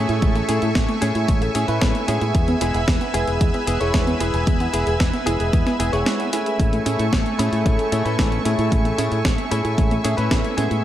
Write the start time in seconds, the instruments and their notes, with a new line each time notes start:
Already playing: clean electric guitar A3 C#4 E4 G#4, analog synth pad A3 E5 G#5 C#6
0.09 fingered electric bass A2, synth arpeggio sound E4, closed hi-hat
0.22 fingered electric bass A1, synth arpeggio sound G#3, kick, closed hi-hat
0.36 synth arpeggio sound A3, closed hi-hat
0.48 fingered electric bass A2, clean electric guitar A3 C#4 E4 G#4, synth arpeggio sound C#4, closed hi-hat
0.62 fingered electric bass A2, synth arpeggio sound E4, closed hi-hat
0.75 fingered electric bass A1, synth arpeggio sound G#3, kick, snare, closed hi-hat
0.89 synth arpeggio sound A3, closed hi-hat
1.02 fingered electric bass A2, clean electric guitar A3 C#4 E4 G#4, synth arpeggio sound C#4, closed hi-hat
1.15 fingered electric bass A2, synth arpeggio sound E4, closed hi-hat
1.28 fingered electric bass A1, synth arpeggio sound G#3, kick, closed hi-hat
1.42 synth arpeggio sound A3, closed hi-hat
1.55 fingered electric bass A2, clean electric guitar A3 C#4 E4 G#4, synth arpeggio sound C#4, closed hi-hat
1.68 fingered electric bass A2, clean electric guitar A3 C#4 E4 B4, synth arpeggio sound E4, closed hi-hat
1.81 fingered electric bass A1, synth arpeggio sound G#3, kick, snare, closed hi-hat
1.95 synth arpeggio sound A3, closed hi-hat
2.08 fingered electric bass A2, clean electric guitar G#3 B3 E4 G#4, synth arpeggio sound C#4, closed hi-hat
2.21 fingered electric bass A2, synth arpeggio sound E4, closed hi-hat
2.35 fingered electric bass E2, synth arpeggio sound G#3, analog synth pad B4 E6, kick, closed hi-hat
2.48 synth arpeggio sound B3, closed hi-hat
2.61 fingered electric bass E1, clean electric guitar G#3 B3 E4 G#4, synth arpeggio sound E4, closed hi-hat
2.74 fingered electric bass E1, synth arpeggio sound G#4, closed hi-hat
2.88 fingered electric bass E2, synth arpeggio sound G#3, kick, snare, closed hi-hat
3.01 synth arpeggio sound B3, closed hi-hat
3.14 fingered electric bass E1, clean electric guitar G#3 B3 E4 G#4, synth arpeggio sound E4, closed hi-hat
3.27 fingered electric bass E1, synth arpeggio sound G#4, closed hi-hat
3.41 fingered electric bass E2, synth arpeggio sound G#3, kick, closed hi-hat
3.54 synth arpeggio sound B3, closed hi-hat
3.67 fingered electric bass E1, clean electric guitar G#3 B3 E4 G#4, synth arpeggio sound E4, closed hi-hat
3.80 fingered electric bass E1, clean electric guitar G#3 B3 E4 C#5, synth arpeggio sound G#4, closed hi-hat
3.94 fingered electric bass E2, synth arpeggio sound G#3, kick, snare, closed hi-hat
4.07 synth arpeggio sound B3, closed hi-hat
4.20 fingered electric bass E1, clean electric guitar G#3 B3 E4 G#4, synth arpeggio sound E4, closed hi-hat
4.34 fingered electric bass E1, synth arpeggio sound G#4, closed hi-hat
4.47 fingered electric bass E2, synth arpeggio sound G#3, kick, closed hi-hat
4.60 synth arpeggio sound B3, closed hi-hat
4.73 fingered electric bass E1, clean electric guitar G#3 B3 E4 G#4, synth arpeggio sound E4, closed hi-hat
4.87 fingered electric bass E1, synth arpeggio sound G#4, closed hi-hat
5.00 fingered electric bass E2, synth arpeggio sound G#3, kick, snare, closed hi-hat
5.13 synth arpeggio sound B3, closed hi-hat
5.26 fingered electric bass E1, clean electric guitar G#3 B3 E4 G#4, synth arpeggio sound E4, closed hi-hat
5.40 fingered electric bass E1, synth arpeggio sound G#4, closed hi-hat
5.53 fingered electric bass E2, synth arpeggio sound G#3, kick, closed hi-hat
5.67 synth arpeggio sound B3, snare, closed hi-hat
5.80 fingered electric bass E1, clean electric guitar G#3 B3 E4 G#4, synth arpeggio sound E4, closed hi-hat
5.93 fingered electric bass E1, clean electric guitar G#3 B3 E4 C#5, synth arpeggio sound G#4, closed hi-hat
6.06 synth arpeggio sound G#3, snare, closed hi-hat
6.20 synth arpeggio sound B3, closed hi-hat
6.33 clean electric guitar A3 C#4 E4 G#4, synth arpeggio sound E4, closed hi-hat
6.46 synth arpeggio sound G#4, closed hi-hat
6.60 fingered electric bass A1, synth arpeggio sound G#3, analog synth pad A3 E5 C#6, kick, closed hi-hat
6.73 synth arpeggio sound A3, closed hi-hat
6.86 fingered electric bass A2, clean electric guitar A3 C#4 E4 G#4, synth arpeggio sound C#4, closed hi-hat
6.99 fingered electric bass A2, synth arpeggio sound E4, closed hi-hat
7.13 fingered electric bass A1, synth arpeggio sound G#3, kick, snare, closed hi-hat
7.26 synth arpeggio sound A3, closed hi-hat
7.39 fingered electric bass A2, clean electric guitar A3 C#4 E4 G#4, synth arpeggio sound C#4, closed hi-hat
7.52 fingered electric bass A2, synth arpeggio sound E4, closed hi-hat
7.66 fingered electric bass A1, synth arpeggio sound G#3, kick, closed hi-hat
7.79 synth arpeggio sound A3, closed hi-hat
7.92 fingered electric bass A2, clean electric guitar A3 C#4 E4 G#4, synth arpeggio sound C#4, closed hi-hat
8.05 fingered electric bass A2, clean electric guitar A3 C#4 E4 B4, synth arpeggio sound E4, closed hi-hat
8.19 fingered electric bass A1, synth arpeggio sound G#3, kick, snare, closed hi-hat
8.32 synth arpeggio sound A3, closed hi-hat
8.45 fingered electric bass A2, clean electric guitar A3 C#4 E4 G#4, synth arpeggio sound C#4, closed hi-hat
8.59 fingered electric bass A2, synth arpeggio sound E4, closed hi-hat
8.72 fingered electric bass A1, synth arpeggio sound G#3, kick, closed hi-hat
8.85 synth arpeggio sound A3, closed hi-hat
8.98 fingered electric bass A2, clean electric guitar A3 C#4 E4 G#4, synth arpeggio sound C#4, closed hi-hat
9.12 fingered electric bass A2, synth arpeggio sound E4, closed hi-hat
9.25 fingered electric bass A1, synth arpeggio sound G#3, kick, snare, closed hi-hat
9.38 synth arpeggio sound A3, closed hi-hat
9.51 fingered electric bass A2, clean electric guitar A3 C#4 E4 G#4, synth arpeggio sound C#4, closed hi-hat
9.65 fingered electric bass A2, synth arpeggio sound E4, closed hi-hat
9.78 fingered electric bass A1, synth arpeggio sound G#3, kick, closed hi-hat
9.91 synth arpeggio sound A3, closed hi-hat
10.04 fingered electric bass A2, clean electric guitar A3 C#4 E4 G#4, synth arpeggio sound C#4, closed hi-hat
10.17 fingered electric bass A2, clean electric guitar A3 C#4 E4 B4, synth arpeggio sound E4, closed hi-hat
10.31 fingered electric bass A1, synth arpeggio sound G#3, kick, snare, closed hi-hat
10.45 synth arpeggio sound A3, closed hi-hat
10.57 fingered electric bass A2, clean electric guitar G#3 B3 E4 G#4, synth arpeggio sound C#4, closed hi-hat
10.71 fingered electric bass A2, synth arpeggio sound E4, closed hi-hat